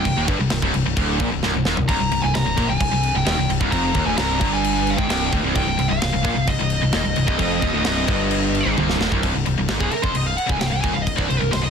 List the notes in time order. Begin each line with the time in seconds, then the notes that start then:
Already playing: G5
0.05 C1 C2, kick, crash
0.16 D#1 D#2
0.28 G1 G2, kick, crash
0.39 C1 C2
0.50 C1 C2, snare, crash
0.62 C1 C2, kick
0.74 C1 C2, crash
0.85 C1 C2
0.96 D1 D2, kick, crash
1.20 A#1 A#2, kick, crash
1.32 C1 C2
1.43 C1 C2, snare
1.53 C1 C2
1.65 D#1 D#2, snare
1.77 C1 C2, floor tom
1.88 C1 C2 A#5, kick, crash
2.00 C1 C2
2.11 C1 C2, crash
2.22 C1 C2 G#5
2.33 C1 C2 A#5, snare, crash
2.45 C1 C2
2.57 A#1 A#2, kick, crash
2.68 C1 C2 G#5
2.80 C1 C2, kick, crash
2.91 C1 C2
3.03 crash
3.14 C1 C2 G5
3.25 D#1 D#2, snare, crash
3.37 C1 C2
3.49 C1 C2, crash
3.60 C1 C2, kick
3.71 F1 F2 A#5, kick, crash
3.94 D#1 D#2, kick, crash
4.05 D1 D2 G#5
4.16 C1 C2 A#5, snare, crash
4.40 G1 G2, kick, crash
4.54 G#5
4.64 crash
4.87 F5, crash
4.97 G#1 G#2 G5, kick
5.08 C1 C2, snare, crash
5.32 D1 D2, kick, crash
5.43 C1 C2
5.54 C1 C2 G5, kick, crash
5.66 C1 C2
5.77 C1 C2, crash
5.89 C1 C2 F5
6.02 C1 C2, snare, crash
6.13 C1 C2
6.24 A#1 A#2, kick, crash
6.35 C1 C2
6.47 C1 C2 D#5, kick, crash
6.59 C1 C2
6.70 crash
6.81 C1 C2
6.93 D#1 D#2, snare, crash
7.04 C1 C2
7.16 C1 C2, crash
7.27 C1 C2, kick
7.39 F1 F2, kick, crash
7.60 D#1 D#2, kick, crash
7.73 D1 D2
7.82 C1 C2, snare, crash
8.06 G1 G2, kick, crash
8.31 crash
8.55 crash
8.65 G#1 G#2
8.77 C1 C2, high tom
8.90 snare
8.99 D1 D2, snare
9.11 C1 C2, kick
9.22 C1 C2, kick, crash
9.35 C1 C2
9.45 C1 C2, crash
9.57 C1 C2
9.68 G#1 G#2, snare, crash
9.79 C1 C2 G#4, kick
9.91 A#4, muted distorted electric guitar stroke, muted picked electric bass stroke, crash
10.02 F1 F2 C5, kick
10.14 C1 C2 D#5, crash
10.27 F5
10.37 F#5, crash
10.47 C1 C2 G#5, kick
10.59 C1 C2 G5, snare, crash
10.67 C2 F5
10.72 C1 G5
10.81 D#1 D#2 G#5, kick, crash
10.93 C1 C2 F5
11.02 D#5
11.07 kick, crash
11.16 C1 C2 D5, kick
11.28 C1 C2 C5, crash
11.39 C1 C2 A#4
11.51 C1 C2 C5, snare, crash
11.61 C1 C2 D#5